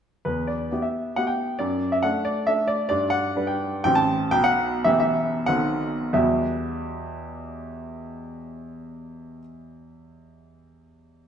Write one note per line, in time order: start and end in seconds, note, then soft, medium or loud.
0.25 0.70 E2 soft
0.25 0.48 B4 medium
0.47 0.83 D5 medium
0.71 1.13 B3 soft
0.71 1.14 E4 soft
0.71 1.14 G4 soft
0.82 1.17 E5 soft
1.16 1.56 B3 soft
1.16 1.56 E4 soft
1.16 1.56 G4 soft
1.16 1.28 F#5 medium
1.27 1.59 G5 medium
1.59 2.02 F#2 soft
1.59 1.92 D5 medium
1.92 2.04 E5 medium
2.03 2.44 A3 soft
2.03 2.44 D4 soft
2.03 2.44 A4 soft
2.03 2.26 F#5 medium
2.25 2.47 D5 medium
2.47 2.86 A3 soft
2.47 2.86 D4 soft
2.47 2.87 A4 soft
2.47 2.68 E5 medium
2.68 2.87 D5 medium
2.89 3.35 G2 medium
2.89 3.12 D5 medium
3.10 3.47 F#5 medium
3.36 3.81 G3 soft
3.36 3.81 D4 soft
3.36 3.81 B4 soft
3.47 3.83 G5 medium
3.84 4.31 A1 medium
3.84 4.29 E3 soft
3.84 4.29 C4 soft
3.84 4.29 G4 soft
3.84 3.96 G5 loud
3.95 4.32 A5 medium
4.31 4.84 B1 medium
4.31 4.44 G5 loud
4.44 4.85 F#5 medium
4.84 5.43 E3 soft
4.84 5.43 B3 soft
4.84 5.44 G4 soft
4.84 4.98 E5 medium
5.00 5.47 E5 medium
5.46 6.12 B1 medium
5.46 6.10 D#3 soft
5.46 6.10 C4 soft
5.46 6.10 A4 soft
5.46 6.13 F#5 medium
6.13 9.39 E2 medium
6.13 9.39 B2 soft
6.13 9.39 G3 soft
6.13 9.40 B3 soft
6.13 9.40 E4 soft
6.13 9.40 G4 soft
6.13 9.39 E5 medium